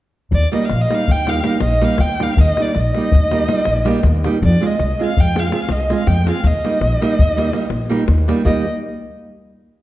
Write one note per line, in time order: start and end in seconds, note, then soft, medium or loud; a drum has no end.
0.31 0.44 D#2 medium
0.31 0.53 D5 medium
0.31 davul low medium
0.43 davul high soft
0.52 0.65 G3 medium
0.52 0.65 A#3 medium
0.52 0.66 D#4 soft
0.52 0.66 G4 medium
0.52 0.66 D#5 medium
0.52 davul high soft
0.65 0.83 F5 medium
0.69 0.83 A#1 medium
0.69 davul high medium
0.81 0.96 D#5 medium
0.90 1.03 G3 medium
0.90 1.04 A#3 medium
0.90 1.04 D#4 soft
0.90 1.04 G4 medium
0.90 davul high medium
0.95 1.13 F5 medium
0.99 davul high soft
1.08 1.40 D#2 medium
1.08 1.31 G5 loud
1.08 davul low medium
1.26 1.39 G3 soft
1.26 1.40 A#3 soft
1.26 1.40 D#4 soft
1.26 1.40 G4 medium
1.26 1.61 F5 medium
1.26 davul high medium
1.36 davul high soft
1.43 1.56 G3 medium
1.43 1.56 A#3 medium
1.43 1.57 D#4 soft
1.43 1.57 G4 medium
1.43 davul high medium
1.60 1.84 A#1 medium
1.60 1.86 D#5 medium
1.60 davul high medium
1.72 davul high soft
1.82 1.94 G3 medium
1.82 1.94 A#3 medium
1.82 1.95 D#4 medium
1.82 1.95 G4 medium
1.82 2.02 F5 medium
1.82 davul high medium
1.98 2.22 D#2 medium
1.98 2.24 G5 medium
1.98 davul high medium
1.98 davul low medium
2.10 davul high soft
2.20 2.33 G3 medium
2.20 2.33 A#3 soft
2.20 2.33 D#4 soft
2.20 2.33 G4 medium
2.20 2.42 F5 medium
2.20 davul high medium
2.37 2.50 D#2 loud
2.37 2.63 D#5 medium
2.37 davul low medium
2.47 davul high soft
2.57 2.71 G3 soft
2.57 2.71 A#3 soft
2.57 2.71 D#4 soft
2.57 2.72 G4 medium
2.57 davul high medium
2.62 2.81 D5 medium
2.75 2.88 A#1 medium
2.75 davul high soft
2.80 4.27 D#5 medium
2.95 3.09 G3 medium
2.95 3.09 A#3 soft
2.95 3.09 D#4 soft
2.95 3.10 G4 medium
2.95 davul high medium
3.04 davul high soft
3.12 3.45 D#2 medium
3.12 davul low medium
3.31 3.44 G3 medium
3.31 3.44 A#3 medium
3.31 3.45 D#4 medium
3.31 3.45 G4 medium
3.31 davul high medium
3.40 davul high soft
3.48 3.61 G3 medium
3.48 3.61 A#3 medium
3.48 3.61 D#4 medium
3.48 3.61 G4 medium
3.48 davul high medium
3.65 3.89 A#1 medium
3.65 davul high medium
3.76 davul high soft
3.85 3.98 G3 medium
3.85 3.99 A#3 medium
3.85 3.99 D#4 medium
3.85 3.99 G4 medium
3.85 davul high medium
4.03 4.26 D#2 medium
4.03 davul high medium
4.03 davul low medium
4.14 davul high soft
4.24 4.37 G3 medium
4.24 4.37 A#3 medium
4.24 4.37 D#4 medium
4.24 4.38 G4 medium
4.24 davul high medium
4.42 4.55 F2 loud
4.42 4.68 D5 medium
4.42 davul low medium
4.52 davul high soft
4.61 4.74 G#3 medium
4.61 4.74 C4 soft
4.61 4.75 F4 soft
4.61 4.75 G#4 medium
4.61 davul high medium
4.66 5.05 D#5 medium
4.79 4.92 C2 medium
4.79 davul high soft
4.99 5.12 G#3 medium
4.99 5.13 C4 soft
4.99 5.13 F4 medium
4.99 5.13 G#4 medium
5.03 5.21 F5 medium
5.09 davul high soft
5.17 5.49 F2 medium
5.17 5.41 G5 medium
5.17 davul low medium
5.34 5.47 G#3 medium
5.34 5.47 C4 soft
5.34 5.48 F4 medium
5.34 5.48 G#4 soft
5.34 davul high medium
5.39 5.73 F5 medium
5.44 davul high soft
5.51 5.64 G#3 soft
5.51 5.64 C4 soft
5.51 5.64 F4 soft
5.51 5.65 G#4 medium
5.51 davul high medium
5.69 5.92 C2 medium
5.69 5.97 D#5 medium
5.69 davul high medium
5.80 davul high soft
5.90 6.02 G#3 medium
5.90 6.02 C4 medium
5.90 6.03 F4 medium
5.90 6.03 G#4 medium
5.90 davul high soft
5.97 6.09 F5 medium
6.07 6.29 F2 medium
6.07 6.28 G5 medium
6.07 davul high medium
6.07 davul low soft
6.17 davul high soft
6.26 6.39 G#3 medium
6.26 6.39 C4 medium
6.26 6.39 F4 soft
6.26 6.40 G#4 medium
6.26 davul high medium
6.31 6.49 F5 medium
6.44 6.56 D#2 loud
6.44 8.09 D#5 medium
6.44 davul low medium
6.54 davul high soft
6.64 6.77 G3 soft
6.64 6.77 A#3 soft
6.64 6.77 D#4 soft
6.64 6.77 G4 medium
6.64 davul high soft
6.73 davul high soft
6.81 6.93 A#1 medium
6.81 davul high medium
6.92 davul high soft
7.01 7.14 G3 medium
7.01 7.14 A#3 medium
7.01 7.14 D#4 medium
7.01 7.15 G4 medium
7.01 davul high medium
7.11 davul high soft
7.19 7.49 D#2 medium
7.19 davul low medium
7.29 davul high soft
7.36 7.49 G3 medium
7.36 7.49 A#3 medium
7.36 7.50 D#4 medium
7.36 7.50 G4 medium
7.36 davul high soft
7.45 davul high soft
7.52 7.65 G3 soft
7.52 7.65 A#3 medium
7.52 7.66 D#4 medium
7.52 7.66 G4 medium
7.52 davul high medium
7.62 davul high soft
7.70 7.92 A#1 medium
7.70 davul high medium
7.81 davul high soft
7.89 8.03 G3 medium
7.89 8.03 A#3 medium
7.89 8.03 D#4 medium
7.89 8.03 G4 medium
7.89 davul high medium
8.00 davul high soft
8.08 8.30 D#2 medium
8.08 davul high medium
8.18 davul high soft
8.28 8.41 G3 medium
8.28 8.41 A#3 medium
8.28 8.41 D#4 medium
8.28 8.41 G4 medium
8.28 davul high medium
8.37 davul high soft
8.45 8.64 D#2 medium
8.45 8.65 G3 medium
8.45 8.65 A#3 medium
8.45 8.65 D#4 medium
8.45 8.65 G4 medium
8.45 8.65 D#5 medium
8.45 davul low medium